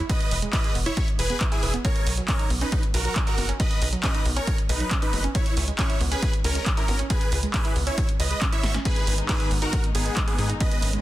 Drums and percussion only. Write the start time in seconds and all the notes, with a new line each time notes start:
0.09 kick, closed hi-hat
0.20 closed hi-hat
0.31 open hi-hat
0.42 closed hi-hat
0.53 kick, clap, closed hi-hat
0.64 closed hi-hat
0.75 open hi-hat
0.86 closed hi-hat
0.97 kick, closed hi-hat
1.08 closed hi-hat
1.19 open hi-hat
1.30 closed hi-hat
1.41 kick, clap, closed hi-hat
1.52 closed hi-hat
1.63 open hi-hat
1.74 closed hi-hat
1.85 kick, closed hi-hat
1.96 closed hi-hat
2.07 open hi-hat
2.17 closed hi-hat
2.28 kick, clap, closed hi-hat
2.39 closed hi-hat
2.50 open hi-hat
2.61 closed hi-hat
2.72 kick, closed hi-hat
2.83 closed hi-hat
2.94 open hi-hat
3.05 closed hi-hat
3.16 kick, clap, closed hi-hat
3.27 closed hi-hat
3.38 open hi-hat
3.49 closed hi-hat
3.60 kick, closed hi-hat
3.71 closed hi-hat
3.82 open hi-hat
3.93 closed hi-hat
4.04 kick, clap, closed hi-hat
4.15 closed hi-hat
4.25 open hi-hat
4.36 closed hi-hat
4.47 kick, closed hi-hat
4.58 closed hi-hat
4.69 open hi-hat
4.80 closed hi-hat
4.91 kick, clap, closed hi-hat
5.02 closed hi-hat
5.13 open hi-hat
5.24 closed hi-hat
5.35 kick, closed hi-hat
5.46 closed hi-hat
5.57 open hi-hat
5.68 closed hi-hat
5.79 kick, clap, closed hi-hat
5.90 closed hi-hat
6.01 open hi-hat
6.12 closed hi-hat
6.23 kick, closed hi-hat
6.33 closed hi-hat
6.44 open hi-hat
6.55 closed hi-hat
6.66 kick, clap, closed hi-hat
6.77 closed hi-hat
6.88 open hi-hat
6.99 closed hi-hat
7.10 kick, closed hi-hat
7.21 closed hi-hat
7.32 open hi-hat
7.43 closed hi-hat
7.54 kick, clap, closed hi-hat
7.65 closed hi-hat
7.76 open hi-hat
7.87 closed hi-hat
7.98 kick, closed hi-hat
8.09 closed hi-hat
8.20 open hi-hat
8.31 closed hi-hat
8.42 kick, clap, closed hi-hat
8.52 closed hi-hat
8.63 snare, open hi-hat
8.74 snare, closed hi-hat
8.85 kick, closed hi-hat
8.96 closed hi-hat
9.07 open hi-hat
9.18 closed hi-hat
9.29 kick, clap, closed hi-hat
9.40 closed hi-hat
9.51 open hi-hat
9.62 closed hi-hat
9.73 kick, closed hi-hat
9.84 closed hi-hat
9.95 open hi-hat
10.06 closed hi-hat
10.17 kick, clap, closed hi-hat
10.28 closed hi-hat
10.38 open hi-hat
10.50 closed hi-hat
10.60 kick, closed hi-hat
10.71 closed hi-hat
10.82 open hi-hat
10.93 closed hi-hat